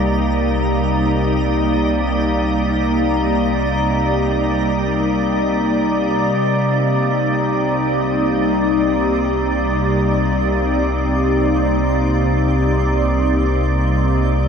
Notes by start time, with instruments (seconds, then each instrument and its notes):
Already playing: sub bass C2, ambient pad C3 G3 A#3 D#4 D5, synth texture A#5
6.36 sub bass C2, synth texture C6